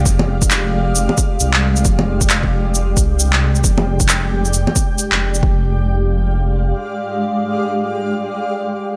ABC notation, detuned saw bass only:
X:1
M:4/4
L:1/16
Q:"Swing 16ths" 1/4=134
K:Fdor
V:1 name="Detuned saw bass" clef=bass
F,,,6 F,,,2 F,,, z3 C,,4 | F,,,6 F,,,4 C,,6 | F,,,6 F,,,2 F,,, z4 F,,,3 | F,,,12 z4 |
z16 |]